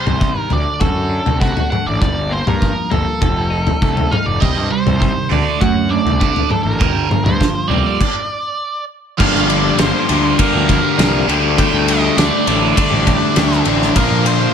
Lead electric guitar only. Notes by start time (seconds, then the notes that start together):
Already playing: C5
0.39 A#4
0.53 D5
0.81 A4
1.40 F#4
1.70 F#5
1.87 D5
2.02 D5
2.32 C5
2.48 A#4
2.92 A4
4.11 F5
4.26 D5
4.41 D#5
4.71 C5
5.32 D5
5.61 F#5
5.90 D5
6.51 A4
6.63 A#4
7.25 C5
7.68 D5
9.18 F5
9.49 D5
9.78 C5
10.39 A#4
11.59 G5
11.89 D#5
12.18 D5
12.76 D5
13.96 A#4
14.27 C5